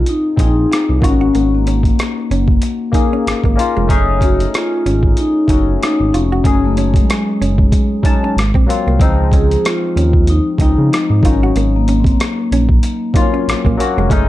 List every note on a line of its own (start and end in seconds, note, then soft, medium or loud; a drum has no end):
0.00 0.36 C4 medium
0.00 0.38 D#4 medium
0.00 0.39 F4 medium
0.00 0.40 G#4 medium
0.06 0.23 D#4 medium
0.06 closed hi-hat medium
0.36 0.66 A#1 medium
0.36 1.00 C4 medium
0.36 1.01 D#4 medium
0.36 0.54 D#4 medium
0.36 1.02 F4 medium
0.36 1.03 G#4 medium
0.36 kick medium
0.36 closed hi-hat medium
0.41 1.05 D#4 medium
0.72 muted hollow-body jazz guitar stroke soft
0.72 cross-stick medium
0.72 closed hi-hat medium
0.89 1.01 C2 medium
1.00 1.30 G#1 medium
1.00 2.04 A#3 medium
1.00 1.09 C4 soft
1.00 1.55 C#4 medium
1.00 2.05 D#4 medium
1.00 1.18 F4 medium
1.00 2.06 F#4 medium
1.00 kick medium
1.00 closed hi-hat medium
1.08 2.08 C#4 medium
1.21 1.32 F#4 medium
1.35 1.91 G#1 medium
1.35 1.50 A#3 medium
1.35 closed hi-hat soft
1.55 1.86 A#3 medium
1.67 1.82 C#4 medium
1.67 closed hi-hat medium
1.83 3.55 A#3 medium
1.83 kick medium
1.83 closed hi-hat soft
1.99 cross-stick medium
1.99 closed hi-hat medium
2.31 2.58 F#1 medium
2.31 2.46 C#4 medium
2.31 closed hi-hat soft
2.48 kick medium
2.62 muted hollow-body jazz guitar stroke soft
2.62 closed hi-hat medium
2.92 3.45 A#3 medium
2.92 3.46 C#4 medium
2.92 3.46 D#4 medium
2.92 3.09 D#4 medium
2.92 3.47 G#4 medium
2.92 kick medium
2.92 closed hi-hat medium
3.13 3.24 C#4 medium
3.27 3.33 G#1 soft
3.27 cross-stick medium
3.27 closed hi-hat medium
3.44 3.56 G#1 medium
3.44 3.56 A#3 medium
3.44 kick medium
3.56 3.83 A#3 medium
3.56 3.83 C#4 medium
3.56 3.84 D#4 medium
3.56 3.84 F4 medium
3.56 muted hollow-body jazz guitar stroke soft
3.56 closed hi-hat medium
3.77 3.88 F1 medium
3.77 3.87 G#3 medium
3.87 4.46 F#1 loud
3.87 4.90 A3 medium
3.87 4.05 A3 medium
3.87 4.90 C#4 medium
3.87 4.91 D#4 medium
3.87 4.92 G#4 loud
3.87 kick medium
3.87 closed hi-hat medium
4.21 4.37 C#4 medium
4.21 4.37 F#4 medium
4.21 kick medium
4.21 closed hi-hat soft
4.40 closed hi-hat soft
4.54 5.20 F4 medium
4.54 cross-stick loud
4.54 closed hi-hat medium
4.86 5.13 G#1 medium
4.86 5.01 C#4 medium
4.86 closed hi-hat soft
5.03 kick medium
5.17 5.50 D#4 medium
5.17 closed hi-hat medium
5.47 5.77 F#1 medium
5.47 6.25 A3 medium
5.47 6.26 C#4 medium
5.47 6.26 D#4 medium
5.47 5.65 D#4 medium
5.47 6.27 F#4 medium
5.47 kick medium
5.47 closed hi-hat medium
5.83 6.14 D#4 medium
5.83 muted hollow-body jazz guitar stroke soft
5.83 cross-stick medium
5.83 closed hi-hat medium
6.00 6.11 G#1 medium
6.13 6.41 F1 medium
6.13 6.60 C#4 medium
6.13 6.29 F4 medium
6.13 closed hi-hat medium
6.32 6.43 F#4 medium
6.43 7.01 F#1 loud
6.43 7.45 F#3 medium
6.43 6.61 A3 medium
6.43 7.46 C#4 medium
6.43 7.46 D#4 medium
6.43 7.47 G#4 medium
6.43 kick medium
6.43 closed hi-hat medium
6.65 6.96 A3 medium
6.77 6.92 C#4 medium
6.77 closed hi-hat soft
6.94 8.65 G#3 medium
6.94 kick medium
6.94 closed hi-hat soft
7.10 cross-stick loud
7.10 closed hi-hat medium
7.41 7.69 F#1 medium
7.41 7.56 C#4 medium
7.41 closed hi-hat soft
7.58 kick medium
7.72 muted hollow-body jazz guitar stroke soft
7.72 kick medium
7.72 closed hi-hat medium
8.02 8.35 F#3 medium
8.02 8.35 C#4 medium
8.02 8.36 D#4 medium
8.02 8.20 D#4 medium
8.02 8.37 A5 medium
8.02 kick medium
8.02 closed hi-hat medium
8.24 8.35 C#4 medium
8.37 8.52 G#1 loud
8.37 cross-stick medium
8.37 closed hi-hat medium
8.54 8.66 A#1 medium
8.54 8.66 C4 medium
8.54 kick medium
8.67 8.93 F#3 medium
8.67 8.94 A#3 medium
8.67 8.94 C4 medium
8.67 8.95 F4 medium
8.67 muted hollow-body jazz guitar stroke soft
8.67 closed hi-hat medium
8.87 8.98 C2 medium
8.87 8.98 A#3 medium
8.99 9.56 C#2 medium
8.99 9.07 E3 medium
8.99 10.01 G#3 medium
8.99 10.02 C4 medium
8.99 9.16 C4 medium
8.99 10.02 D#4 medium
8.99 kick medium
8.99 closed hi-hat medium
9.05 10.04 F3 medium
9.32 9.48 C#4 medium
9.32 9.66 G#4 medium
9.32 kick medium
9.32 closed hi-hat soft
9.51 closed hi-hat soft
9.65 10.30 F4 medium
9.65 cross-stick loud
9.65 closed hi-hat medium
9.96 10.40 D#2 medium
9.96 10.12 C#4 medium
9.96 closed hi-hat soft
10.13 kick medium
10.27 10.43 D#4 medium
10.27 closed hi-hat medium
10.58 10.75 C#2 medium
10.58 11.22 F3 medium
10.58 11.23 G#3 medium
10.58 11.23 C4 medium
10.58 10.75 D#4 medium
10.58 11.24 D#4 medium
10.58 11.26 D#4 medium
10.58 kick medium
10.58 closed hi-hat medium
10.78 10.90 C#3 medium
10.93 muted hollow-body jazz guitar stroke soft
10.93 cross-stick medium
10.93 closed hi-hat medium
11.10 11.22 G#2 medium
11.21 11.51 G#1 medium
11.21 12.25 F#3 medium
11.21 12.26 A#3 medium
11.21 11.31 C4 soft
11.21 12.27 D#4 medium
11.21 11.40 F4 medium
11.21 kick medium
11.21 closed hi-hat medium
11.26 11.71 C#4 medium
11.30 12.30 C#4 medium
11.43 11.54 F#4 medium
11.56 12.12 G#1 loud
11.56 11.71 A#3 medium
11.56 closed hi-hat medium
11.76 11.99 A#3 medium
11.88 12.03 C#4 medium
11.88 closed hi-hat medium
12.00 12.07 C4 medium
12.04 13.76 A#3 medium
12.04 kick medium
12.04 closed hi-hat soft
12.20 cross-stick loud
12.20 closed hi-hat medium
12.52 12.79 A#1 medium
12.52 12.67 C#4 medium
12.52 closed hi-hat medium
12.69 kick medium
12.83 muted hollow-body jazz guitar stroke soft
12.83 closed hi-hat medium
13.13 13.66 F#3 medium
13.13 13.67 A#3 medium
13.13 13.22 C4 medium
13.13 13.31 D#4 medium
13.13 13.68 F4 medium
13.13 kick medium
13.13 closed hi-hat medium
13.22 13.71 C#4 medium
13.34 13.45 C#4 medium
13.48 13.55 A#1 soft
13.48 cross-stick medium
13.48 closed hi-hat medium
13.65 13.77 A#1 medium
13.65 13.77 A#3 medium
13.65 kick medium
13.77 14.04 F#3 medium
13.77 14.05 A#3 medium
13.77 14.05 C#4 medium
13.77 14.06 F#4 medium
13.77 muted hollow-body jazz guitar stroke soft
13.77 closed hi-hat medium
13.98 14.09 F1 medium
13.98 14.09 G#3 medium
14.09 14.29 F#1 loud
14.09 14.29 G#3 medium
14.09 14.29 A3 medium
14.09 14.26 A3 medium
14.09 14.29 C#4 medium
14.09 14.29 D#4 loud
14.09 kick medium
14.09 closed hi-hat medium